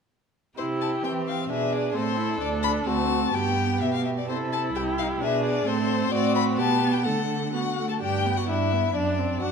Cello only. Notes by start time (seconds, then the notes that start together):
0.58 C3
1.04 E3
1.50 B2
1.96 A2
2.41 D2
2.87 D2
3.33 G2
3.81 B2
4.28 C3
4.75 C2
5.21 B2
5.66 A2
6.12 A2
6.57 B2
7.05 D3
8.02 G2
8.49 G2
8.95 F#2
9.43 F#2